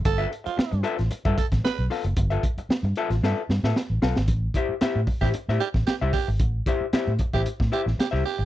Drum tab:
HH |xxxx-xxxxxxx-xox|xxxx-xxx--------|x-x-x-o-x-x-x-o-|x-x-x-x-x-x-x-o-|
SD |----o--o---oo-o-|----o--oo-ooo-oo|----o--o-o-oo-o-|----o--o-o-oooo-|
BD |o--------ooo----|o-o-------------|o-o---oo---o--o-|o-o---oo-o------|